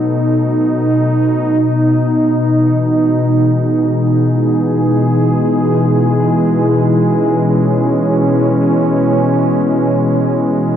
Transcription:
0, 0, Header, 1, 2, 480
1, 0, Start_track
1, 0, Key_signature, 4, "major"
1, 0, Tempo, 500000
1, 10334, End_track
2, 0, Start_track
2, 0, Title_t, "Analog synth pad"
2, 0, Program_c, 0, 89
2, 0, Note_on_c, 0, 47, 85
2, 0, Note_on_c, 0, 54, 78
2, 0, Note_on_c, 0, 57, 82
2, 0, Note_on_c, 0, 63, 75
2, 0, Note_on_c, 0, 69, 86
2, 1563, Note_off_c, 0, 54, 0
2, 1565, Note_off_c, 0, 69, 0
2, 1569, Note_off_c, 0, 57, 0
2, 2348, Note_on_c, 0, 52, 77
2, 2736, Note_on_c, 0, 56, 58
2, 3104, Note_on_c, 0, 68, 73
2, 6745, Note_on_c, 0, 61, 67
2, 7769, Note_off_c, 0, 63, 0
2, 10334, Note_off_c, 0, 47, 0
2, 10334, Note_off_c, 0, 52, 0
2, 10334, Note_off_c, 0, 56, 0
2, 10334, Note_off_c, 0, 61, 0
2, 10334, Note_off_c, 0, 68, 0
2, 10334, End_track
0, 0, End_of_file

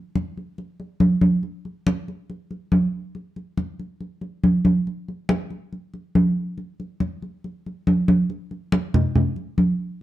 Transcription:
0, 0, Header, 1, 2, 480
1, 0, Start_track
1, 0, Tempo, 429492
1, 1597, Time_signature, 4, 2, 24, 8
1, 11203, End_track
2, 0, Start_track
2, 0, Title_t, "Drums"
2, 173, Note_on_c, 9, 63, 57
2, 284, Note_off_c, 9, 63, 0
2, 418, Note_on_c, 9, 63, 31
2, 530, Note_off_c, 9, 63, 0
2, 650, Note_on_c, 9, 63, 31
2, 761, Note_off_c, 9, 63, 0
2, 890, Note_on_c, 9, 63, 33
2, 1002, Note_off_c, 9, 63, 0
2, 1119, Note_on_c, 9, 63, 80
2, 1231, Note_off_c, 9, 63, 0
2, 1356, Note_on_c, 9, 63, 73
2, 1468, Note_off_c, 9, 63, 0
2, 1598, Note_on_c, 9, 63, 29
2, 1710, Note_off_c, 9, 63, 0
2, 1845, Note_on_c, 9, 63, 30
2, 1957, Note_off_c, 9, 63, 0
2, 2085, Note_on_c, 9, 63, 80
2, 2197, Note_off_c, 9, 63, 0
2, 2326, Note_on_c, 9, 63, 33
2, 2437, Note_off_c, 9, 63, 0
2, 2566, Note_on_c, 9, 63, 32
2, 2678, Note_off_c, 9, 63, 0
2, 2800, Note_on_c, 9, 63, 34
2, 2912, Note_off_c, 9, 63, 0
2, 3037, Note_on_c, 9, 63, 79
2, 3149, Note_off_c, 9, 63, 0
2, 3519, Note_on_c, 9, 63, 30
2, 3631, Note_off_c, 9, 63, 0
2, 3759, Note_on_c, 9, 63, 31
2, 3870, Note_off_c, 9, 63, 0
2, 3995, Note_on_c, 9, 63, 52
2, 4107, Note_off_c, 9, 63, 0
2, 4241, Note_on_c, 9, 63, 32
2, 4353, Note_off_c, 9, 63, 0
2, 4476, Note_on_c, 9, 63, 30
2, 4588, Note_off_c, 9, 63, 0
2, 4709, Note_on_c, 9, 63, 34
2, 4821, Note_off_c, 9, 63, 0
2, 4957, Note_on_c, 9, 63, 78
2, 5069, Note_off_c, 9, 63, 0
2, 5194, Note_on_c, 9, 63, 70
2, 5305, Note_off_c, 9, 63, 0
2, 5443, Note_on_c, 9, 63, 31
2, 5555, Note_off_c, 9, 63, 0
2, 5682, Note_on_c, 9, 63, 31
2, 5794, Note_off_c, 9, 63, 0
2, 5912, Note_on_c, 9, 63, 85
2, 6024, Note_off_c, 9, 63, 0
2, 6152, Note_on_c, 9, 63, 32
2, 6264, Note_off_c, 9, 63, 0
2, 6398, Note_on_c, 9, 63, 30
2, 6510, Note_off_c, 9, 63, 0
2, 6634, Note_on_c, 9, 63, 32
2, 6746, Note_off_c, 9, 63, 0
2, 6875, Note_on_c, 9, 63, 78
2, 6987, Note_off_c, 9, 63, 0
2, 7349, Note_on_c, 9, 63, 33
2, 7461, Note_off_c, 9, 63, 0
2, 7596, Note_on_c, 9, 63, 29
2, 7708, Note_off_c, 9, 63, 0
2, 7827, Note_on_c, 9, 63, 57
2, 7938, Note_off_c, 9, 63, 0
2, 8074, Note_on_c, 9, 63, 34
2, 8185, Note_off_c, 9, 63, 0
2, 8318, Note_on_c, 9, 63, 33
2, 8430, Note_off_c, 9, 63, 0
2, 8565, Note_on_c, 9, 63, 32
2, 8676, Note_off_c, 9, 63, 0
2, 8795, Note_on_c, 9, 63, 76
2, 8907, Note_off_c, 9, 63, 0
2, 9032, Note_on_c, 9, 63, 77
2, 9144, Note_off_c, 9, 63, 0
2, 9274, Note_on_c, 9, 63, 31
2, 9385, Note_off_c, 9, 63, 0
2, 9511, Note_on_c, 9, 63, 29
2, 9622, Note_off_c, 9, 63, 0
2, 9748, Note_on_c, 9, 63, 89
2, 9860, Note_off_c, 9, 63, 0
2, 9994, Note_on_c, 9, 63, 34
2, 9994, Note_on_c, 9, 64, 74
2, 10106, Note_off_c, 9, 63, 0
2, 10106, Note_off_c, 9, 64, 0
2, 10232, Note_on_c, 9, 63, 32
2, 10232, Note_on_c, 9, 64, 63
2, 10343, Note_off_c, 9, 63, 0
2, 10343, Note_off_c, 9, 64, 0
2, 10463, Note_on_c, 9, 63, 32
2, 10575, Note_off_c, 9, 63, 0
2, 10704, Note_on_c, 9, 63, 75
2, 10815, Note_off_c, 9, 63, 0
2, 11203, End_track
0, 0, End_of_file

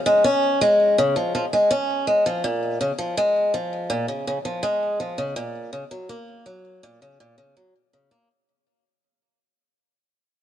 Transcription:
0, 0, Header, 1, 2, 480
1, 0, Start_track
1, 0, Tempo, 731707
1, 1599, Time_signature, 4, 2, 24, 8
1, 6841, End_track
2, 0, Start_track
2, 0, Title_t, "Steel-string acoustic guitar"
2, 0, Program_c, 0, 25
2, 39, Note_on_c, 0, 56, 80
2, 147, Note_off_c, 0, 56, 0
2, 160, Note_on_c, 0, 61, 98
2, 387, Note_off_c, 0, 61, 0
2, 402, Note_on_c, 0, 56, 77
2, 629, Note_off_c, 0, 56, 0
2, 645, Note_on_c, 0, 49, 101
2, 750, Note_off_c, 0, 49, 0
2, 761, Note_on_c, 0, 53, 73
2, 868, Note_off_c, 0, 53, 0
2, 883, Note_on_c, 0, 53, 80
2, 950, Note_off_c, 0, 53, 0
2, 1004, Note_on_c, 0, 56, 78
2, 1110, Note_off_c, 0, 56, 0
2, 1119, Note_on_c, 0, 61, 101
2, 1347, Note_off_c, 0, 61, 0
2, 1359, Note_on_c, 0, 56, 74
2, 1467, Note_off_c, 0, 56, 0
2, 1482, Note_on_c, 0, 53, 83
2, 1589, Note_off_c, 0, 53, 0
2, 1601, Note_on_c, 0, 46, 98
2, 1828, Note_off_c, 0, 46, 0
2, 1841, Note_on_c, 0, 49, 81
2, 1909, Note_off_c, 0, 49, 0
2, 1958, Note_on_c, 0, 53, 76
2, 2067, Note_off_c, 0, 53, 0
2, 2082, Note_on_c, 0, 56, 101
2, 2309, Note_off_c, 0, 56, 0
2, 2321, Note_on_c, 0, 53, 83
2, 2548, Note_off_c, 0, 53, 0
2, 2556, Note_on_c, 0, 46, 110
2, 2666, Note_off_c, 0, 46, 0
2, 2678, Note_on_c, 0, 49, 78
2, 2787, Note_off_c, 0, 49, 0
2, 2803, Note_on_c, 0, 49, 85
2, 2870, Note_off_c, 0, 49, 0
2, 2919, Note_on_c, 0, 53, 79
2, 3027, Note_off_c, 0, 53, 0
2, 3036, Note_on_c, 0, 56, 100
2, 3266, Note_off_c, 0, 56, 0
2, 3279, Note_on_c, 0, 53, 75
2, 3387, Note_off_c, 0, 53, 0
2, 3398, Note_on_c, 0, 49, 78
2, 3507, Note_off_c, 0, 49, 0
2, 3517, Note_on_c, 0, 46, 105
2, 3746, Note_off_c, 0, 46, 0
2, 3757, Note_on_c, 0, 49, 82
2, 3827, Note_off_c, 0, 49, 0
2, 3877, Note_on_c, 0, 54, 83
2, 3986, Note_off_c, 0, 54, 0
2, 3997, Note_on_c, 0, 58, 108
2, 4226, Note_off_c, 0, 58, 0
2, 4237, Note_on_c, 0, 54, 82
2, 4466, Note_off_c, 0, 54, 0
2, 4482, Note_on_c, 0, 46, 102
2, 4589, Note_off_c, 0, 46, 0
2, 4605, Note_on_c, 0, 49, 76
2, 4710, Note_off_c, 0, 49, 0
2, 4725, Note_on_c, 0, 46, 107
2, 4830, Note_off_c, 0, 46, 0
2, 4840, Note_on_c, 0, 49, 82
2, 4948, Note_off_c, 0, 49, 0
2, 4964, Note_on_c, 0, 54, 79
2, 5070, Note_off_c, 0, 54, 0
2, 5204, Note_on_c, 0, 49, 73
2, 5310, Note_off_c, 0, 49, 0
2, 5322, Note_on_c, 0, 58, 84
2, 5428, Note_off_c, 0, 58, 0
2, 6841, End_track
0, 0, End_of_file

